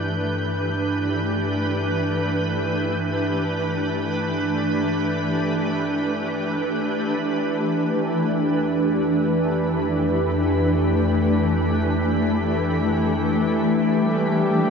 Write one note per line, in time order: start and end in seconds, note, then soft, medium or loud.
0.00 7.14 G2 medium
0.00 14.70 E3 medium
0.00 14.70 A3 medium
0.00 14.70 D4 medium
0.00 14.70 G4 medium
0.00 14.70 B4 medium
0.00 7.19 G6 medium
7.15 13.93 F2 medium
7.15 14.70 B6 medium
13.98 14.70 G2 medium
13.98 14.70 G3 medium